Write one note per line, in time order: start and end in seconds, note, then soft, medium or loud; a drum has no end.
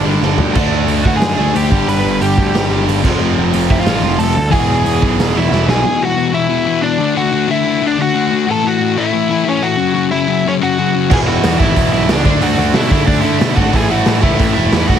0.00 0.54 G2 medium
0.00 0.52 D3 medium
0.00 0.52 G3 medium
0.00 0.20 G3 medium
0.00 0.17 D4 medium
0.00 0.18 D5 medium
0.05 0.20 G1 medium
0.05 0.20 G2 medium
0.05 0.21 D3 medium
0.21 0.37 G1 medium
0.21 0.54 G2 medium
0.21 0.54 D3 medium
0.21 snare medium
0.25 0.55 G3 medium
0.38 0.53 D2 medium
0.38 floor tom medium
0.55 0.70 D2 medium
0.55 1.37 D3 medium
0.55 1.38 A3 loud
0.55 1.37 D4 loud
0.55 kick loud
0.55 crash loud
0.71 0.86 D2 loud
0.87 1.03 D2 medium
0.87 open hi-hat medium
1.02 1.20 D2 medium
1.02 1.69 D3 medium
1.02 1.69 A3 medium
1.02 1.68 D4 loud
1.02 1.13 F#4 medium
1.02 kick loud
1.07 1.14 F#5 medium
1.16 1.53 G#4 medium
1.16 1.57 G#5 medium
1.21 1.36 F#2 medium
1.21 snare loud
1.21 open hi-hat medium
1.38 1.53 D2 medium
1.38 1.54 A3 medium
1.38 1.53 D4 loud
1.42 1.52 D3 medium
1.53 1.70 D2 medium
1.53 1.69 D3 medium
1.53 1.70 A3 medium
1.53 1.71 D4 medium
1.53 1.86 G4 medium
1.53 1.89 G5 loud
1.53 open hi-hat medium
1.71 1.86 G1 medium
1.71 2.51 G2 medium
1.71 2.53 D3 medium
1.71 2.54 G3 loud
1.71 kick loud
1.88 2.03 G1 medium
1.88 2.19 B4 medium
1.88 2.22 B5 loud
1.88 open hi-hat medium
2.04 2.19 G1 loud
2.19 2.36 G1 medium
2.19 3.01 G2 medium
2.19 3.02 D3 loud
2.19 3.03 G3 medium
2.19 2.84 G4 medium
2.19 2.83 G5 medium
2.19 open hi-hat medium
2.38 2.53 D2 medium
2.38 kick loud
2.52 2.69 G1 medium
2.52 2.68 G2 medium
2.52 2.69 D3 medium
2.52 2.68 G3 medium
2.52 snare loud
2.52 open hi-hat medium
2.69 2.85 G1 medium
2.69 3.03 G2 medium
2.69 3.02 D3 medium
2.69 3.02 G3 loud
2.88 3.03 G1 loud
2.88 open hi-hat medium
3.03 3.19 F1 medium
3.03 3.84 F2 loud
3.03 3.85 C3 loud
3.03 3.86 F3 loud
3.03 kick loud
3.03 crash loud
3.22 3.36 F1 medium
3.38 3.53 F1 loud
3.51 3.69 F1 medium
3.51 4.34 F2 medium
3.51 4.34 C3 medium
3.51 4.35 F3 medium
3.51 open hi-hat medium
3.70 3.85 F1 loud
3.70 3.78 E4 medium
3.70 3.79 E5 medium
3.70 kick loud
3.80 4.17 F4 medium
3.80 4.21 F5 medium
3.85 4.02 A1 medium
3.85 4.01 F2 medium
3.85 4.02 C3 medium
3.85 4.00 F3 loud
3.85 snare loud
3.85 open hi-hat medium
4.01 4.18 F1 medium
4.01 4.35 F2 medium
4.01 4.35 C3 medium
4.01 4.34 F3 medium
4.19 4.34 F1 medium
4.19 4.51 A4 medium
4.19 4.50 A5 loud
4.19 open hi-hat medium
4.37 4.52 D2 medium
4.50 4.68 E1 medium
4.50 5.33 E2 medium
4.50 5.34 B2 loud
4.50 5.32 E3 loud
4.50 5.48 G#4 medium
4.50 5.47 G#5 loud
4.50 kick loud
4.50 open hi-hat medium
4.70 4.85 E1 loud
4.85 5.01 E1 medium
4.85 open hi-hat medium
5.01 5.17 B1 medium
5.01 5.84 E2 medium
5.01 5.83 B2 medium
5.01 5.83 E3 medium
5.01 kick loud
5.18 5.33 E1 medium
5.18 snare loud
5.18 open hi-hat medium
5.33 5.51 E1 loud
5.33 5.49 E2 medium
5.33 5.50 B2 medium
5.33 5.49 E3 medium
5.37 5.67 E4 medium
5.37 5.68 E5 loud
5.50 5.67 E1 medium
5.50 5.81 E2 medium
5.50 5.82 B2 medium
5.50 snare medium
5.54 5.83 E3 loud
5.67 5.83 B1 medium
5.67 5.99 G#4 medium
5.67 6.03 G#5 loud
5.67 snare medium
5.82 5.99 E2 loud
5.82 5.99 B2 loud
5.82 5.98 E3 loud
5.99 6.14 E2 medium
5.99 6.15 B2 medium
5.99 6.16 E3 loud
5.99 6.32 F#4 medium
6.05 6.34 F#5 loud
6.16 6.33 E2 medium
6.16 6.32 B2 loud
6.16 6.31 E3 loud
6.33 6.47 E2 medium
6.33 6.47 B2 loud
6.33 6.48 E3 loud
6.33 6.80 E4 medium
6.33 6.80 E5 loud
6.49 6.66 E2 loud
6.49 6.65 B2 loud
6.49 6.64 E3 loud
6.65 6.81 E2 medium
6.65 6.81 B2 medium
6.65 6.82 E3 loud
6.82 6.98 E2 loud
6.82 6.98 B2 loud
6.82 6.99 E3 loud
6.82 7.13 D4 medium
6.82 7.14 D5 medium
6.99 7.15 D3 loud
6.99 7.15 A3 loud
6.99 7.14 D4 loud
7.15 7.30 D3 loud
7.15 7.32 A3 loud
7.15 7.32 D4 loud
7.15 7.47 F#4 medium
7.15 7.50 F#5 loud
7.31 7.48 D3 medium
7.31 7.48 A3 loud
7.31 7.46 D4 loud
7.48 7.63 D3 medium
7.48 7.64 A3 loud
7.48 7.64 D4 loud
7.48 7.81 E4 medium
7.48 7.84 E5 loud
7.64 7.81 D3 medium
7.64 7.82 A3 loud
7.64 7.80 D4 loud
7.81 7.96 D3 loud
7.81 7.98 A3 loud
7.81 7.98 D4 loud
7.87 8.00 D4 medium
7.87 8.01 D5 medium
7.97 8.14 D3 medium
7.97 8.14 A3 medium
7.97 8.13 D4 loud
7.97 8.45 F#4 medium
8.02 8.51 F#5 loud
8.14 8.30 D3 loud
8.14 8.32 A3 loud
8.14 8.31 D4 loud
8.31 8.47 D3 medium
8.31 8.48 A3 loud
8.31 8.47 D4 medium
8.48 8.64 A2 loud
8.48 8.63 E3 loud
8.48 8.63 A3 loud
8.48 8.65 A4 loud
8.48 8.66 A5 loud
8.63 8.78 A2 medium
8.63 8.79 E3 medium
8.63 8.80 A3 loud
8.63 8.96 F#4 medium
8.63 8.97 F#5 medium
8.79 8.97 A2 loud
8.79 8.96 E3 loud
8.79 8.96 A3 medium
8.96 9.10 A2 medium
8.96 9.11 E3 medium
8.96 9.12 A3 loud
8.96 9.43 E4 medium
8.96 9.48 E5 loud
9.12 9.29 A2 loud
9.12 9.28 E3 loud
9.12 9.28 A3 loud
9.29 9.44 A2 medium
9.29 9.44 E3 medium
9.29 9.45 A3 loud
9.45 9.61 A2 loud
9.45 9.61 E3 loud
9.45 9.60 A3 loud
9.45 9.63 C#4 medium
9.49 9.64 C#5 medium
9.61 9.77 A2 medium
9.61 9.77 E3 medium
9.61 9.77 A3 medium
9.61 10.09 F#4 medium
9.61 10.11 F#5 loud
9.77 9.94 F#2 loud
9.77 9.94 C#3 loud
9.77 9.93 F#3 loud
9.94 10.10 F#2 medium
9.94 10.11 C#3 medium
9.94 10.11 F#3 loud
10.11 10.28 F#2 loud
10.11 10.28 C#3 loud
10.11 10.26 F#3 loud
10.11 10.42 E4 medium
10.11 10.46 E5 loud
10.28 10.44 F#2 medium
10.28 10.45 C#3 medium
10.28 10.45 F#3 loud
10.45 10.61 F#2 loud
10.45 10.60 C#3 loud
10.45 10.59 F#3 loud
10.45 10.53 C#4 medium
10.45 10.53 C#5 medium
10.60 10.77 F#2 medium
10.60 10.78 C#3 medium
10.60 10.78 F#3 loud
10.60 11.08 F#4 medium
10.60 11.13 F#5 loud
10.78 10.94 F#2 loud
10.78 10.94 C#3 loud
10.78 10.92 F#3 loud
10.94 11.09 F#2 medium
10.94 11.10 C#3 medium
10.94 11.09 F#3 loud
11.10 11.36 E1 loud
11.10 11.26 E2 loud
11.10 11.26 B2 loud
11.10 11.25 E3 loud
11.10 11.18 G#4 medium
11.10 11.19 G#5 loud
11.10 kick loud
11.10 crash loud
11.26 11.41 E2 medium
11.26 11.42 B2 medium
11.26 11.43 E3 loud
11.26 11.58 F#4 medium
11.26 11.60 F#5 loud
11.43 11.58 E2 medium
11.43 11.56 E2 medium
11.43 11.58 B2 loud
11.43 11.57 E3 loud
11.43 snare loud
11.43 open hi-hat medium
11.58 11.73 G#1 loud
11.58 11.73 E2 medium
11.58 11.73 B2 loud
11.58 11.74 E3 loud
11.58 11.91 E4 medium
11.58 11.92 E5 loud
11.58 kick loud
11.74 11.89 E1 medium
11.74 11.92 E2 loud
11.74 11.91 B2 loud
11.74 11.91 E3 loud
11.74 kick loud
11.74 open hi-hat medium
11.92 12.05 B1 loud
11.92 12.06 E2 medium
11.92 12.07 B2 medium
11.92 12.08 E3 loud
11.92 12.08 E4 medium
11.92 12.10 E5 medium
12.08 12.25 C#2 medium
12.08 12.24 E2 loud
12.08 12.23 B2 loud
12.08 12.24 E3 loud
12.08 12.44 D5 loud
12.08 snare loud
12.08 open hi-hat medium
12.12 12.42 D4 medium
12.24 12.38 D2 loud
12.24 12.40 D3 loud
12.24 12.41 A3 loud
12.24 12.39 D4 loud
12.24 kick loud
12.40 12.54 D2 loud
12.40 12.55 D3 loud
12.40 12.56 A3 loud
12.40 12.56 D4 loud
12.40 12.73 F#4 medium
12.40 12.76 F#5 loud
12.40 open hi-hat medium
12.56 12.71 D2 loud
12.56 12.73 D3 loud
12.56 12.74 A3 loud
12.56 12.72 D4 loud
12.73 12.87 B2 loud
12.73 12.89 D3 medium
12.73 12.90 A3 loud
12.73 12.90 D4 loud
12.73 12.91 E4 medium
12.73 12.90 E5 loud
12.73 snare loud
12.73 open hi-hat medium
12.90 13.06 D3 loud
12.90 13.04 D3 medium
12.90 13.07 A3 medium
12.90 13.05 D4 loud
12.90 13.07 E4 medium
12.90 13.05 E5 medium
12.90 kick loud
13.06 13.20 D2 loud
13.06 13.22 D3 loud
13.06 13.23 A3 loud
13.06 13.22 D4 medium
13.06 13.23 D4 loud
13.06 13.21 D5 medium
13.06 kick loud
13.06 open hi-hat medium
13.21 13.39 D3 medium
13.21 13.37 D3 loud
13.21 13.39 A3 medium
13.21 13.38 D4 loud
13.21 13.53 E4 medium
13.21 13.53 E5 loud
13.39 13.53 B2 loud
13.39 13.56 D3 medium
13.39 13.57 A3 loud
13.39 13.57 D4 loud
13.39 snare loud
13.39 open hi-hat medium
13.56 13.70 G#1 loud
13.56 13.73 D3 loud
13.56 13.74 A3 medium
13.56 13.73 D4 loud
13.56 13.72 F#4 medium
13.56 13.75 F#5 loud
13.56 kick medium
13.73 13.99 A1 loud
13.73 13.90 A2 loud
13.73 13.90 E3 loud
13.73 13.90 A3 loud
13.73 13.90 G#4 medium
13.73 13.91 G#5 loud
13.73 kick loud
13.73 open hi-hat medium
13.90 14.04 A2 medium
13.90 14.06 E3 loud
13.90 14.06 A3 loud
13.90 14.22 F#4 medium
13.90 14.22 F#5 loud
14.06 14.24 A2 loud
14.06 14.19 A2 loud
14.06 14.23 E3 loud
14.06 14.23 A3 loud
14.06 snare loud
14.06 open hi-hat medium
14.22 14.35 C#2 loud
14.22 14.39 A2 medium
14.22 14.39 E3 loud
14.22 14.40 A3 loud
14.22 14.53 E4 medium
14.22 14.53 E5 medium
14.22 kick loud
14.40 14.52 A1 loud
14.40 14.57 A2 loud
14.40 14.56 E3 loud
14.40 14.56 A3 loud
14.40 kick loud
14.40 open hi-hat medium
14.54 14.69 E1 loud
14.54 14.73 E3 medium
14.54 14.74 A3 loud
14.54 14.86 E4 medium
14.54 14.85 E5 medium
14.58 14.72 A2 medium
14.72 14.85 E2 medium
14.72 14.89 A2 loud
14.72 14.89 E3 loud
14.72 14.89 A3 loud
14.72 snare loud
14.72 open hi-hat medium
14.88 14.99 E1 loud
14.88 14.99 A2 medium
14.88 14.99 E3 loud
14.88 14.99 A3 loud
14.88 14.99 F#4 medium
14.88 14.99 F#5 loud
14.88 kick medium